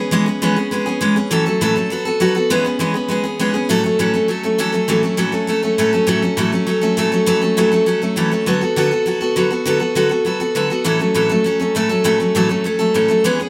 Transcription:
Already playing: C#4 G#4
0.00 B3
0.11 E3 G#3 B3 C#4 G#4
0.26 B3 C#4 G#4
0.42 E3 G#3 B3 C#4 G#4
0.56 B3 C#4 G#4
0.71 G#3 B3 C#4 G#4
0.86 B3 C#4 G#4
1.01 E3 G#3 B3 C#4 G#4
1.16 B3 C#4 G#4
1.31 A2 E3 F#3 A3 C#4 A4
1.46 F#3 A3 C#4 A4
1.61 A2 E3 F#3 A3 C#4 A4
1.76 F#3 A3 C#4 A4
1.90 F#3 B3 F#4 A4
2.05 B3 F#4 A4
2.20 D3 F#3 B3 F#4 A4
2.35 B3 F#4 A4
2.50 E3 G#3 B3 C#4 G#4
2.64 B3 C#4 G#4
2.79 E3 G#3 B3 C#4 G#4
2.94 B3 C#4 G#4
3.08 G#3 B3 C#4 G#4
3.24 B3 C#4 G#4
3.39 E3 G#3 B3 C#4 G#4
3.54 B3 C#4 G#4
3.69 A2 E3 F#3 A3 C#4 A4
3.84 F#3 A3 C#4 A4
3.99 A2 E3 F#3 A3 C#4 A4
4.14 F#3 A3 C#4 A4
4.28 F#3 A3 C#4 A4
4.43 F#3 A3 C#4 A4
4.58 A2 E3 F#3 A3 C#4 A4
4.72 F#3 A3 C#4 A4
4.88 A2 E3 F#3 A3 C#4 A4
5.03 F#3 A3 C#4 A4
5.17 A2 E3 F#3 A3 C#4 A4
5.32 F#3 A3 C#4 A4
5.47 F#3 A3 C#4 A4
5.63 F#3 A3 C#4 A4
5.78 A2 E3 F#3 A3 C#4 A4
5.93 F#3 A3 C#4 A4
6.07 A2 E3 F#3 A3 C#4 A4
6.22 F#3 A3 C#4 A4
6.37 A2 E3 F#3 A3 C#4 A4
6.52 F#3 A3 C#4 A4
6.67 F#3 A3 C#4 A4
6.81 F#3 A3 C#4 A4
6.97 A2 E3 F#3 A3 C#4 A4
7.12 F#3 A3 C#4 A4
7.26 A2 E3 F#3 A3 C#4 A4
7.41 F#3 A3 C#4 A4
7.57 A2 E3 F#3 A3 C#4 A4
7.71 F#3 A3 C#4 A4
7.86 F#3 A3 C#4 A4
8.02 F#3 A3 C#4 A4
8.16 A2 E3 F#3 A3 C#4 A4
8.31 F#3 A3 C#4 A4
8.46 D3 F#3 B3 F#4 A4
8.61 B3 F#4 A4
8.76 D3 F#3 B3 F#4 A4
8.91 B3 F#4 A4
9.06 F#3 B3 F#4 A4
9.21 B3 F#4 A4
9.36 D3 F#3 B3 F#4 A4
9.50 B3 F#4 A4
9.66 D3 F#3 B3 F#4 A4
9.80 B3 F#4 A4
9.95 D3 F#3 B3 F#4 A4
10.09 B3 F#4 A4
10.25 F#3 B3 F#4 A4
10.40 B3 F#4 A4
10.55 D3 F#3 B3 F#4 A4
10.70 B3 F#4 A4
10.84 A2 E3 F#3 A3 C#4 A4
10.99 F#3 A3 C#4 A4
11.14 A2 E3 F#3 A3 C#4 A4
11.29 F#3 A3 C#4 A4
11.44 F#3 A3 C#4 A4
11.60 F#3 A3 C#4 A4
11.75 A2 E3 F#3 A3 C#4 A4
11.89 F#3 A3 C#4 A4
12.04 A2 E3 F#3 A3 C#4 A4
12.20 F#3 A3 C#4 A4
12.35 A2 E3 F#3 A3 C#4 A4
12.49 F#3 A3 C#4 A4
12.64 F#3 A3 C#4 A4
12.79 F#3 A3 C#4 A4
12.94 A2 E3 F#3 A3 C#4 A4
13.08 F#3 A3 C#4 A4
13.24 E3 G#3 B3 C#4 G#4
13.39 B3 C#4 G#4

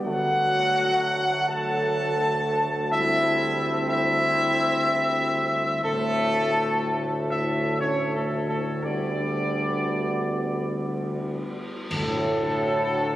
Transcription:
0.04 D2 F#3 A3 F#4 F#5
1.48 A4 A5
2.92 G3 C4 E4 E5
3.89 E4 E5
5.84 D2 A2 A3 A4
7.30 E4 E5
7.80 C#4 C#5
8.14 A3 A4
8.48 A3 A4
8.83 G3 B3 D4 D5
11.91 D2 A2 F#3 D4 A4, concert bass drum, crash

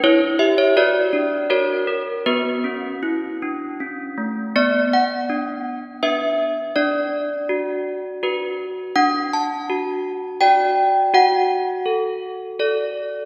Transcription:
0.04 E4 B4 C#5
0.39 G4 E5
0.58 C#5
0.77 F#4 B4 D5
1.13 D4
1.50 F#4 A#4 C#5
1.87 A#4
2.26 B3 F#4 B4
2.64 C#4
3.03 E4
3.42 D4
3.80 C#4
4.18 A3
4.56 B3 D5
4.93 F#5
5.30 D4
6.03 D4 B4 E5
6.76 D4 D5
7.49 F#4
8.23 F#4 B4
8.96 D4 F#5
9.33 A5
9.70 F#4
10.41 F#4 D5 G5
11.14 F#4 F#5
11.86 A4
12.60 A4 D5

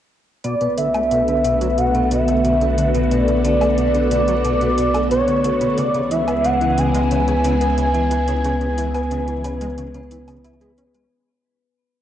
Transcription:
0.44 B1 B2 D3 A3 B3 F#4 A4 D5, closed hi-hat
0.61 B2 B4, closed hi-hat
0.78 D3 E5, closed hi-hat
0.94 A3 B3, closed hi-hat, low woodblock
1.11 B2 B4, closed hi-hat
1.28 D3, closed hi-hat
1.44 B2 B3, closed hi-hat
1.61 F#3 B4, closed hi-hat
1.78 B2 F#5, closed hi-hat
1.94 B2 B3, closed hi-hat
2.11 B2 B4 E5, closed hi-hat
2.28 A3, closed hi-hat
2.44 B2 B3, closed hi-hat
2.61 D3 B4, closed hi-hat
2.78 D3, closed hi-hat
2.94 B2 B3, closed hi-hat
3.11 B2 B4 D5, closed hi-hat
3.28 B2, closed hi-hat
3.44 D3 B3, closed hi-hat
3.61 A3 B4, closed hi-hat, low woodblock
3.78 B2, closed hi-hat
3.94 D3 B3, closed hi-hat
4.11 B2 B4 D5, closed hi-hat
4.28 F#3, closed hi-hat
4.44 B2 B3, closed hi-hat
4.61 B2 B4, closed hi-hat
4.78 B2, closed hi-hat
4.94 A3 B3, closed hi-hat, low woodblock
5.11 B2 B4 C#5, closed hi-hat
5.28 D3, closed hi-hat
5.44 D3 B3, closed hi-hat
5.61 B2 B4, closed hi-hat
5.78 C#2 C#3 E3 G#3 E4 G#4 D5, closed hi-hat
5.94 C#3 B3, closed hi-hat
6.11 E3 B4 E5, closed hi-hat
6.28 B3, closed hi-hat, low woodblock
6.44 C#3 B3 F#5, closed hi-hat
6.61 E3 B4, closed hi-hat
6.78 C#3 G#5, closed hi-hat
6.94 G#3 B3, closed hi-hat
7.11 C#3 B4, closed hi-hat
7.28 C#3, closed hi-hat
7.44 C#3 B3, closed hi-hat
7.61 B3 B4, closed hi-hat
7.78 C#3, closed hi-hat
7.94 E3 B3, closed hi-hat
8.11 E3 B4, closed hi-hat
8.28 C#3, closed hi-hat
8.44 C#3 B3, closed hi-hat
8.61 C#3 B4, closed hi-hat
8.78 E3, closed hi-hat
8.94 B3, closed hi-hat, low woodblock
9.11 C#3 B4, closed hi-hat
9.28 E3, closed hi-hat
9.44 C#3 B3, closed hi-hat, low woodblock
9.61 G#3 B4, closed hi-hat
9.78 C#3, closed hi-hat
9.94 C#3 B3, closed hi-hat
10.11 E3 B4, closed hi-hat
10.28 C#3, closed hi-hat, low woodblock
10.44 B3 E4, closed hi-hat
10.61 G#3 B4, closed hi-hat
10.78 C#4, closed hi-hat
10.94 G#3 B3, closed hi-hat

